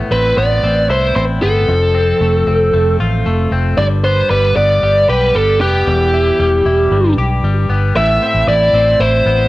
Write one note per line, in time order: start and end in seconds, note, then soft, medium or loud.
0.00 1.69 A2 medium
0.00 0.36 B3 medium
0.11 0.32 A1 medium
0.11 0.63 C4 medium
0.11 0.38 B4 medium
0.37 0.59 A1 loud
0.37 1.41 B3 medium
0.37 0.86 D5 medium
0.63 0.89 A1 loud
0.63 1.16 C4 medium
0.89 1.11 C2 loud
0.89 1.74 E4 medium
0.89 1.15 C5 medium
1.16 1.38 A1 loud
1.16 1.95 C4 medium
1.16 1.23 C5 medium
1.42 1.64 G1 medium
1.42 1.74 B3 medium
1.42 2.96 A4 medium
1.68 2.12 F1 medium
1.68 3.78 F2 medium
1.95 2.46 C4 medium
2.21 2.42 F1 loud
2.21 2.72 A3 medium
2.47 2.69 F1 medium
2.47 3.51 C4 medium
2.73 2.95 F1 loud
2.73 3.25 A3 medium
3.00 3.21 A1 medium
3.00 4.07 F4 medium
3.26 3.47 F1 medium
3.26 3.84 A3 medium
3.51 3.73 F1 medium
3.51 3.84 C4 medium
3.78 4.21 G1 loud
3.78 5.87 G2 medium
3.78 3.85 D5 loud
4.04 4.57 B3 medium
4.04 4.29 C5 medium
4.30 4.52 G1 loud
4.30 4.82 G3 medium
4.30 4.55 B4 loud
4.56 4.78 G1 loud
4.56 5.61 B3 medium
4.56 5.09 D5 loud
4.83 5.04 G1 medium
4.83 5.35 G3 medium
5.09 5.30 B1 medium
5.09 7.18 G4 medium
5.09 5.36 B4 medium
5.35 5.61 G1 medium
5.35 6.39 G3 medium
5.35 5.59 A4 medium
5.61 5.83 F1 medium
5.61 6.13 B3 medium
5.61 7.14 G4 medium
5.87 6.30 E1 loud
5.87 6.92 E2 medium
6.14 6.65 E4 medium
6.39 6.61 E1 loud
6.39 6.97 G3 medium
6.65 6.87 E1 medium
6.65 6.97 E4 medium
6.91 7.13 G1 loud
6.91 8.01 G2 medium
7.17 7.39 B1 medium
7.17 7.96 G4 medium
7.43 7.65 G1 loud
7.43 8.01 G3 medium
7.69 7.91 G1 medium
7.69 8.25 B3 medium
7.96 8.17 A1 loud
7.96 9.48 A2 medium
7.96 8.47 E4 medium
7.96 8.48 E5 loud
8.22 8.74 C4 medium
8.34 8.45 A1 medium
8.48 8.69 A1 loud
8.48 8.99 E4 medium
8.48 9.02 D5 loud
8.73 8.95 A1 loud
8.73 9.48 C4 medium
8.99 9.21 A1 medium
8.99 9.48 E4 medium
8.99 9.48 C5 medium
9.26 9.47 A1 medium
9.26 9.48 B3 medium